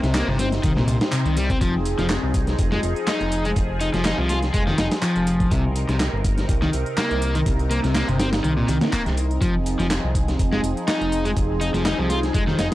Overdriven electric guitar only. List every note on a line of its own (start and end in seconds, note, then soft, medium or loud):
0.03 0.14 C3 medium
0.15 0.27 A#3 loud
0.28 0.38 C3 medium
0.39 0.48 C4 loud
0.63 0.72 D#3 medium
0.77 0.87 A#2 medium
0.88 0.96 A#2 medium
1.12 1.21 C3 medium
1.26 1.36 D#3 medium
1.37 1.49 G3 loud
1.50 1.57 C4 loud
1.61 1.74 F3 medium
1.99 2.06 F3 medium
2.72 2.79 G#3 medium
3.08 3.44 D#4 loud
3.45 3.50 G#3 loud
3.81 3.89 D#4 medium
3.94 4.04 F3 medium
4.05 4.17 D#4 loud
4.18 4.28 F3 medium
4.29 4.38 F4 loud
4.54 4.62 G#3 medium
4.67 4.78 D#3 medium
4.78 4.87 D#4 medium
5.03 5.50 F3 medium
5.51 5.64 C3 medium
5.89 5.96 C3 medium
6.62 6.69 D#3 medium
6.98 7.34 A#3 loud
7.35 7.40 D#3 loud
7.71 7.79 A#3 medium
7.84 7.94 C3 medium
7.95 8.07 A#3 loud
8.08 8.18 C3 medium
8.20 8.28 C4 loud
8.44 8.53 D#3 medium
8.57 8.68 A#2 medium
8.69 8.77 D#3 medium
8.93 9.01 A#3 medium
9.42 9.54 F3 medium
9.79 9.86 F3 medium
10.53 10.60 G#3 medium
10.88 11.24 D#4 loud
11.25 11.30 G#3 loud
11.61 11.69 D#4 medium
11.74 11.84 F3 medium
11.85 11.97 D#4 loud
11.99 12.09 F3 medium
12.10 12.18 F4 loud
12.34 12.43 G#3 medium
12.47 12.58 D#3 medium
12.58 12.67 D#4 medium